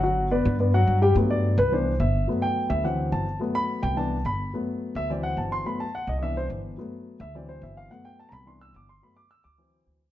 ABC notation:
X:1
M:4/4
L:1/8
Q:1/4=214
K:G
V:1 name="Grand piano"
[F,Ff]2 [B,Bd]2 [B,Bd] [F,Ff]2 [G,Gg] | z d2 B c2 e2 | z g2 e f2 a2 | z b2 g a2 b2 |
z3 e d f a c' | b a f ^d [_e=e] c z2 | z3 e d c e =f | f g a [_b=b] c' e' d' c' |
b d' e' d'3 z2 |]
V:2 name="Grand piano"
z8 | [F,A,B,]3 z [E,B,D] z3 | [F,A,B,]4 [E,F,C]3 z | [F,A,B,]4 [E,B,D] z3 |
[F,A,B,]4 [E,F,C]4 | [F,A,B,] z3 [E,B,D]4 | [F,A,B,]3 z [E,F,C]4 | [F,A,B,]4 [E,B,D]3 z |
[F,A,B,] z3 [E,F,C]3 z |]
V:3 name="Upright bass" clef=bass
G,,,3 G,,3 G,,2 | G,,3 C,,3 G,,,2 | z3 D,,3 G,,,2 | z3 C,,3 G,,,2 |
z3 D,,3 G,,,2 | z3 C,,3 G,,,2 | z3 D,,3 G,,,2 | z3 C,,3 G,,,2 |
z3 D,,3 D,,2 |]